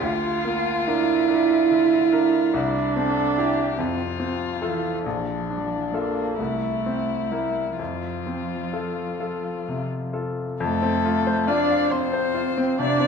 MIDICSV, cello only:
0, 0, Header, 1, 2, 480
1, 0, Start_track
1, 0, Key_signature, -1, "major"
1, 0, Tempo, 836820
1, 16, Time_signature, 6, 3, 24, 8
1, 2896, Tempo, 898204
1, 3856, Tempo, 940439
1, 5776, Tempo, 865801
1, 7143, End_track
2, 0, Start_track
2, 0, Title_t, "Cello"
2, 0, Program_c, 0, 42
2, 16, Note_on_c, 0, 65, 83
2, 500, Note_on_c, 0, 64, 85
2, 509, Note_off_c, 0, 65, 0
2, 1455, Note_on_c, 0, 62, 84
2, 1463, Note_off_c, 0, 64, 0
2, 2158, Note_off_c, 0, 62, 0
2, 2161, Note_on_c, 0, 60, 62
2, 2397, Note_off_c, 0, 60, 0
2, 2647, Note_on_c, 0, 52, 66
2, 2896, Note_on_c, 0, 53, 59
2, 2904, Note_off_c, 0, 52, 0
2, 3171, Note_on_c, 0, 55, 42
2, 3179, Note_off_c, 0, 53, 0
2, 3218, Note_on_c, 0, 53, 45
2, 3226, Note_off_c, 0, 55, 0
2, 3264, Note_on_c, 0, 52, 44
2, 3272, Note_off_c, 0, 53, 0
2, 3310, Note_on_c, 0, 53, 46
2, 3318, Note_off_c, 0, 52, 0
2, 3364, Note_on_c, 0, 58, 63
2, 3372, Note_off_c, 0, 53, 0
2, 3601, Note_on_c, 0, 57, 68
2, 3609, Note_off_c, 0, 58, 0
2, 4092, Note_on_c, 0, 55, 58
2, 4099, Note_off_c, 0, 57, 0
2, 4321, Note_off_c, 0, 55, 0
2, 4324, Note_on_c, 0, 53, 54
2, 5514, Note_off_c, 0, 53, 0
2, 5775, Note_on_c, 0, 57, 97
2, 6256, Note_on_c, 0, 62, 90
2, 6264, Note_off_c, 0, 57, 0
2, 6505, Note_on_c, 0, 60, 78
2, 6513, Note_off_c, 0, 62, 0
2, 6981, Note_on_c, 0, 62, 94
2, 6989, Note_off_c, 0, 60, 0
2, 7143, Note_off_c, 0, 62, 0
2, 7143, End_track
0, 0, End_of_file